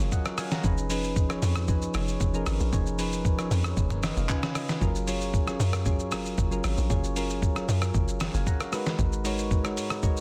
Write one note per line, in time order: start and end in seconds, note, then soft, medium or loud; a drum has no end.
0.00 0.10 F#1 loud
0.00 0.66 F#3 medium
0.00 0.64 C#4 medium
0.00 0.66 F4 medium
0.00 0.65 G#4 medium
0.00 0.66 A#4 loud
0.00 0.66 C#5 loud
0.12 0.37 D#5 medium
0.12 0.37 F#5 medium
0.12 kick loud
0.12 shaker medium
0.25 cross-stick loud
0.25 shaker soft
0.38 0.51 F5 medium
0.38 0.51 G#5 medium
0.38 cross-stick medium
0.38 open hi-hat medium
0.38 shaker medium
0.51 0.77 F#5 medium
0.51 0.76 A#5 medium
0.51 snare medium
0.51 shaker medium
0.63 1.38 F1 loud
0.63 0.85 F3 medium
0.63 0.85 C#4 medium
0.63 0.85 D#4 medium
0.63 0.85 G#4 medium
0.63 0.86 B4 loud
0.63 kick loud
0.63 shaker medium
0.78 shaker medium
0.89 1.21 F3 medium
0.89 1.21 C#4 medium
0.89 1.22 D#4 medium
0.89 1.22 G#4 medium
0.89 1.22 B4 loud
0.89 open hi-hat medium
0.89 shaker medium
1.04 shaker medium
1.16 kick medium
1.16 shaker medium
1.29 1.60 F3 medium
1.29 1.61 C#4 medium
1.29 1.61 D#4 medium
1.29 1.61 G#4 medium
1.29 1.61 C#5 loud
1.29 cross-stick medium
1.29 shaker medium
1.42 1.88 F2 loud
1.42 open hi-hat medium
1.42 shaker medium
1.56 cross-stick loud
1.56 shaker medium
1.68 1.89 F3 medium
1.68 1.89 C#4 medium
1.68 1.90 D#4 medium
1.68 1.90 G#4 medium
1.68 1.90 B4 medium
1.68 kick loud
1.68 shaker medium
1.82 shaker medium
1.94 2.17 F1 loud
1.94 2.26 F3 medium
1.94 2.26 C#4 medium
1.94 2.26 D#4 medium
1.94 2.26 G#4 medium
1.94 2.27 C#5 medium
1.94 cross-stick loud
1.94 open hi-hat soft
1.94 shaker medium
2.08 shaker medium
2.21 2.43 F1 loud
2.21 kick loud
2.21 shaker medium
2.33 2.65 F3 medium
2.33 2.65 C#4 medium
2.33 2.65 D#4 medium
2.33 2.66 G#4 medium
2.33 2.66 A#4 medium
2.33 shaker soft
2.46 2.59 G#1 loud
2.46 cross-stick loud
2.46 open hi-hat medium
2.46 shaker medium
2.60 2.71 A#1 medium
2.60 shaker medium
2.72 3.47 F1 loud
2.72 2.93 F3 medium
2.72 2.94 C#4 medium
2.72 2.94 D#4 medium
2.72 2.94 G#4 medium
2.72 2.94 C#5 loud
2.72 kick loud
2.72 shaker medium
2.86 shaker medium
2.98 3.30 F3 medium
2.98 3.30 C#4 medium
2.98 3.30 D#4 medium
2.98 3.31 G#4 medium
2.98 3.31 B4 loud
2.98 open hi-hat medium
2.98 shaker loud
3.12 shaker medium
3.25 kick medium
3.25 shaker medium
3.37 3.69 F3 medium
3.37 3.69 C#4 medium
3.37 3.70 D#4 medium
3.37 3.70 G#4 medium
3.37 3.70 C#5 loud
3.37 cross-stick medium
3.37 shaker medium
3.51 3.74 F2 loud
3.51 open hi-hat medium
3.51 shaker medium
3.64 cross-stick loud
3.64 shaker medium
3.77 4.12 F1 medium
3.77 3.90 G#4 medium
3.77 3.90 B4 medium
3.77 kick loud
3.77 shaker medium
3.90 4.03 A#4 medium
3.90 4.03 C#5 medium
3.90 mid tom loud
3.90 shaker medium
4.03 4.16 B4 medium
4.03 4.16 D#5 medium
4.03 cross-stick loud
4.03 snare medium
4.03 open hi-hat soft
4.03 shaker medium
4.17 4.28 F1 loud
4.17 4.42 C#5 medium
4.17 4.41 F5 medium
4.17 shaker medium
4.28 4.40 C#3 medium
4.28 4.40 C#4 medium
4.28 4.40 D#4 medium
4.28 4.40 F4 medium
4.28 4.41 B4 loud
4.28 4.54 G#5 medium
4.28 kick loud
4.28 clap medium
4.28 shaker medium
4.42 4.73 C#3 medium
4.42 4.74 C#4 medium
4.42 4.74 D#4 medium
4.42 4.74 F4 medium
4.42 4.74 B4 medium
4.42 cross-stick loud
4.42 snare medium
4.42 shaker soft
4.55 4.80 D#5 medium
4.55 cross-stick loud
4.55 open hi-hat medium
4.55 shaker medium
4.69 snare medium
4.69 shaker medium
4.81 5.56 F#1 loud
4.81 5.02 F#3 medium
4.81 5.02 C#4 medium
4.81 5.03 F4 medium
4.81 5.03 G#4 medium
4.81 5.03 A#4 loud
4.81 kick loud
4.81 shaker medium
4.95 shaker medium
5.07 5.39 F#3 medium
5.07 5.39 C#4 medium
5.07 5.39 F4 medium
5.07 5.39 G#4 medium
5.07 5.40 C#5 loud
5.07 open hi-hat medium
5.07 shaker loud
5.21 shaker medium
5.34 kick loud
5.34 shaker medium
5.46 5.78 F#3 medium
5.46 5.78 C#4 medium
5.46 5.78 F4 medium
5.46 5.79 G#4 medium
5.46 5.79 C#5 medium
5.46 cross-stick medium
5.46 shaker medium
5.60 6.13 F#2 loud
5.60 open hi-hat medium
5.60 shaker medium
5.73 cross-stick loud
5.73 shaker medium
5.85 6.06 F#3 medium
5.85 6.07 C#4 medium
5.85 6.07 F4 medium
5.85 6.07 G#4 medium
5.85 6.07 C#5 loud
5.85 kick loud
5.85 shaker medium
5.99 shaker medium
6.11 6.35 F#1 loud
6.11 6.43 F#3 medium
6.11 6.43 C#4 medium
6.11 6.43 F4 medium
6.11 6.44 G#4 medium
6.11 6.44 A#4 medium
6.11 cross-stick loud
6.11 open hi-hat soft
6.11 shaker medium
6.26 shaker medium
6.38 6.61 F#1 loud
6.38 kick loud
6.38 shaker medium
6.51 6.82 F#3 medium
6.51 6.82 C#4 medium
6.51 6.83 F4 medium
6.51 6.83 G#4 medium
6.51 6.83 A#4 medium
6.51 shaker soft
6.64 6.76 G#1 medium
6.64 cross-stick loud
6.64 open hi-hat medium
6.64 shaker medium
6.78 6.89 A#1 medium
6.78 shaker medium
6.89 7.64 F#1 loud
6.89 7.11 F#3 medium
6.89 7.11 C#4 medium
6.89 7.11 F4 medium
6.89 7.11 G#4 medium
6.89 7.12 C#5 medium
6.89 kick loud
6.89 shaker medium
7.04 shaker medium
7.15 7.47 F#3 medium
7.15 7.48 C#4 medium
7.15 7.48 F4 medium
7.15 7.48 G#4 medium
7.15 7.48 A#4 loud
7.15 open hi-hat medium
7.15 shaker loud
7.30 shaker medium
7.42 kick medium
7.42 shaker medium
7.55 7.86 F#3 medium
7.55 7.87 C#4 medium
7.55 7.87 F4 medium
7.55 7.87 G#4 medium
7.55 7.87 A#4 loud
7.55 cross-stick medium
7.55 shaker medium
7.68 7.91 F#2 loud
7.68 open hi-hat medium
7.68 shaker medium
7.82 cross-stick loud
7.82 shaker medium
7.94 8.29 F#1 medium
7.94 kick loud
7.94 shaker medium
8.08 shaker medium
8.20 cross-stick loud
8.20 snare medium
8.20 open hi-hat soft
8.20 shaker medium
8.34 8.45 F#1 medium
8.34 8.46 F5 medium
8.34 8.46 G#5 medium
8.34 shaker medium
8.47 8.60 F#5 medium
8.47 8.60 A#5 medium
8.47 kick loud
8.47 shaker medium
8.60 8.85 C#5 medium
8.60 8.85 F5 medium
8.60 cross-stick loud
8.60 shaker soft
8.72 9.14 G#3 medium
8.72 9.15 D#4 medium
8.72 9.15 F#4 medium
8.72 9.15 A#4 medium
8.72 9.15 B4 loud
8.72 cross-stick loud
8.72 open hi-hat medium
8.72 shaker medium
8.86 snare medium
8.86 shaker medium
8.99 9.78 G#1 loud
8.99 kick loud
8.99 shaker medium
9.12 shaker medium
9.24 9.56 G#3 medium
9.24 9.56 D#4 medium
9.24 9.57 F#4 medium
9.24 9.57 A#4 medium
9.24 9.57 C#5 loud
9.24 open hi-hat medium
9.24 shaker loud
9.38 shaker medium
9.51 kick medium
9.51 shaker medium
9.64 9.95 G#3 medium
9.64 9.95 D#4 medium
9.64 9.96 F#4 medium
9.64 9.96 A#4 medium
9.64 9.96 C#5 loud
9.64 cross-stick medium
9.64 shaker medium
9.77 10.21 G#2 loud
9.77 open hi-hat medium
9.77 shaker medium
9.90 cross-stick loud
9.90 shaker medium
10.02 10.21 G#3 medium
10.02 10.21 D#4 medium
10.02 10.21 F#4 medium
10.02 10.21 A#4 medium
10.02 10.21 C#5 loud
10.02 kick loud
10.02 shaker medium
10.17 shaker medium